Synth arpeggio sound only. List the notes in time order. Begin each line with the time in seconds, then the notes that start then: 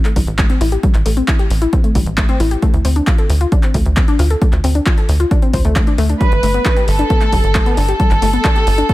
0.05 A3
0.16 G3
0.39 A3
0.50 C4
0.61 E4
0.72 G4
0.83 G3
1.06 A3
1.17 C4
1.28 E4
1.39 G4
1.62 E4
1.73 C4
1.84 A3
1.95 G3
2.18 A3
2.29 C4
2.40 E4
2.51 G4
2.62 A3
2.85 C4
2.96 D4
3.07 F4
3.18 A4
3.41 F4
3.52 D4
3.63 C4
3.74 A3
3.97 C4
4.08 D4
4.19 F4
4.30 A4
4.42 A3
4.64 C4
4.75 D4
4.86 F4
4.98 A4
5.20 F4
5.31 D4
5.42 C4
5.54 C5
5.65 A3
5.76 A3
5.87 D4
5.98 A3
6.09 D4
6.21 G3
6.43 A3
6.54 B3
6.65 D4
6.77 G4
6.99 D4
7.10 B3
7.21 A3
7.33 G3
7.55 A3
7.66 B3
7.77 D4
7.88 G4
8.00 G3
8.22 A3
8.33 B3
8.45 D4
8.56 G4
8.78 D4
8.89 B3